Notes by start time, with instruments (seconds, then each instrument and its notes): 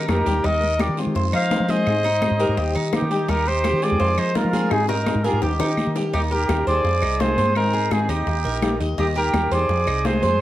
Already playing: cuban tres D#4
0.08 fretless electric bass F2, nylon-string guitar G3 A#3 D#4 G4, flute G4, trumpet A#4, low bongo, high conga, short guiro, claves
0.26 fretless electric bass D#2, nylon-string guitar G3 A#3 D#4 G4, cuban tres G4, low bongo, high conga, short guiro
0.44 fretless electric bass D#2, nylon-string guitar D#3 G3 A#3 D#4 G4, cuban tres D#4, flute A#4, trumpet D#5, high bongo, high conga, long guiro
0.62 muted nylon-string guitar stroke, high conga
0.79 nylon-string guitar G3 A#3 D#4 G4, cuban tres G4, flute A#4, trumpet D5, high bongo, high conga, short guiro, claves
0.89 fretless electric bass D#3
0.97 nylon-string guitar D#3 G#3 C4 F4, high bongo, high conga, short guiro
1.07 fretless electric bass D#3
1.15 fretless electric bass F2, cuban tres C5, high bongo, high conga, long guiro
1.33 fretless electric bass F3, cuban tres D#4, flute C5, trumpet F5, high bongo, high conga, claves
1.51 nylon-string guitar D#3 G#3 C4 F4, high bongo, low bongo, high conga, short guiro
1.60 fretless electric bass F3
1.68 nylon-string guitar D#3 G#3 C4 F4, cuban tres G#4, flute C5, trumpet D#5, high bongo, high conga, short guiro
1.86 fretless electric bass G#2, nylon-string guitar D#3 G#3 C4 D#4 G#4, high bongo, high conga, long guiro, claves
2.05 cuban tres D#4, muted nylon-string guitar stroke, high conga
2.22 nylon-string guitar G#3 C4 D#4 G#4, high bongo, high conga, short guiro, claves
2.31 fretless electric bass G#2
2.39 nylon-string guitar G3 A#3 D#4 G4, cuban tres A#4, high conga, short guiro
2.49 fretless electric bass G#2
2.57 fretless electric bass D#2, cuban tres G4, high bongo, high conga, long guiro
2.75 fretless electric bass D#3, cuban tres D#4, high bongo, high conga
2.92 nylon-string guitar G3 A#3 D#4 G4, flute D#4, trumpet G4, high bongo, low bongo, high conga, short guiro, claves
3.02 fretless electric bass D#3
3.11 nylon-string guitar G3 A#3 D#4 G4, cuban tres G4, high conga, short guiro
3.28 fretless electric bass D#2, nylon-string guitar D#3 G3 A#3 D#4 G4, cuban tres D#4, flute G4, trumpet A#4, high bongo, high conga, long guiro
3.47 flute G4, trumpet C5, muted nylon-string guitar stroke, high conga
3.64 nylon-string guitar G3 A#3 D#4 G4, cuban tres G4, high bongo, high conga, short guiro, claves
3.73 fretless electric bass D#3
3.82 nylon-string guitar D#3 G#3 C4 F4, flute G#4, trumpet D5, high bongo, high conga, short guiro
3.91 fretless electric bass E2
4.00 fretless electric bass F2, cuban tres C5, high bongo, high conga, long guiro
4.18 fretless electric bass F3, cuban tres D#4, flute G#4, trumpet C5, high bongo, high conga, claves
4.35 nylon-string guitar D#3 G#3 C4 F4, flute F4, trumpet A#4, high bongo, low bongo, high conga, short guiro
4.45 fretless electric bass F3
4.53 nylon-string guitar D#3 G#3 C4 F4, cuban tres G#4, high bongo, high conga, short guiro
4.71 fretless electric bass G#2, nylon-string guitar D#3 G#3 C4 D#4 G#4, flute D#4, trumpet G#4, high bongo, long guiro, claves
4.88 flute D#4, cuban tres D#4, trumpet A#4, muted nylon-string guitar stroke, high bongo, high conga
5.06 nylon-string guitar G#3 C4 D#4 G#4, high bongo, high conga, short guiro, claves
5.15 fretless electric bass G#2
5.24 nylon-string guitar G3 A#3 D#4 G4, flute F4, trumpet G#4, cuban tres A#4, low bongo, high conga, short guiro
5.33 fretless electric bass G#2
5.42 fretless electric bass D#2, flute D#4, trumpet G4, cuban tres G4, low bongo, high conga, long guiro
5.60 fretless electric bass D#3, cuban tres D#4, low bongo, high conga
5.77 nylon-string guitar G3 A#3 D#4 G4, high conga, short guiro, claves
5.87 fretless electric bass D#3
5.96 nylon-string guitar G3 A#3 D#4 G4, cuban tres G4, low bongo, high conga, short guiro
6.13 fretless electric bass D#2, nylon-string guitar D#3 G3 A#3 D#4 G4, cuban tres D#4, flute D#4, trumpet G4, high bongo, high conga, long guiro
6.31 nylon-string guitar A#3 D#4 G4, cuban tres G4, flute G4, trumpet A#4, high conga
6.48 fretless electric bass D#2, nylon-string guitar D#3 G3 A#3 D#4 G4, high bongo, high conga, short guiro, claves
6.67 fretless electric bass D#2, nylon-string guitar A#3 D#4 G4, flute G#4, cuban tres C5, trumpet D5, high bongo, high conga, short guiro
6.84 fretless electric bass F2, muted nylon-string guitar stroke, high bongo, high conga, long guiro
7.02 fretless electric bass C2, cuban tres D#4, high bongo, high conga, claves
7.19 nylon-string guitar C3 D#3 G#3 C4 F4, flute G#4, trumpet C5, high bongo, low bongo, high conga, short guiro
7.38 fretless electric bass G2, nylon-string guitar G#3 C4 F4, cuban tres C5, high bongo, high conga, short guiro
7.55 fretless electric bass G#2, nylon-string guitar D#3 G#3 C4 D#4 G#4, flute D#4, trumpet A#4, high bongo, high conga, long guiro, claves
7.74 nylon-string guitar C4 D#4 G#4, cuban tres G#4, high conga
7.91 fretless electric bass G#2, nylon-string guitar D#3 G#3 C4 D#4 G#4, flute D#4, trumpet G#4, high bongo, high conga, short guiro, claves
8.09 fretless electric bass D#2, nylon-string guitar C4 D#4 G#4, cuban tres D#4, flute D#4, trumpet G4, high bongo, high conga, short guiro
8.27 fretless electric bass D#2, muted nylon-string guitar stroke, high bongo, high conga, long guiro
8.45 fretless electric bass A#1, cuban tres A#4, high bongo, high conga
8.61 nylon-string guitar D#3 G3 A#3 D#4 G4, high bongo, low bongo, high conga, short guiro, claves
8.80 fretless electric bass D#2, nylon-string guitar A#3 D#4 G4, cuban tres D#5, high conga, short guiro
8.98 fretless electric bass D#2, nylon-string guitar D#3 G3 A#3 D#4 G4, cuban tres D#4, flute D#4, trumpet G4, high bongo, high conga, long guiro
9.15 nylon-string guitar A#3 D#4 G4, cuban tres G4, flute G4, trumpet A#4, high conga
9.33 fretless electric bass D#2, nylon-string guitar D#3 G3 A#3 D#4 G4, high bongo, high conga, short guiro, claves
9.51 fretless electric bass E2, nylon-string guitar A#3 D#4 G4, flute G#4, cuban tres C5, trumpet D5, high bongo, high conga, short guiro
9.69 fretless electric bass F2, muted nylon-string guitar stroke, high bongo, high conga, long guiro
9.87 fretless electric bass C2, cuban tres D#4, high bongo, high conga, claves
10.05 nylon-string guitar C3 D#3 G#3 C4 F4, flute G#4, trumpet C5, high bongo, low bongo, high conga, short guiro
10.22 fretless electric bass F2, nylon-string guitar G#3 C4 F4, cuban tres C5, high bongo, high conga, short guiro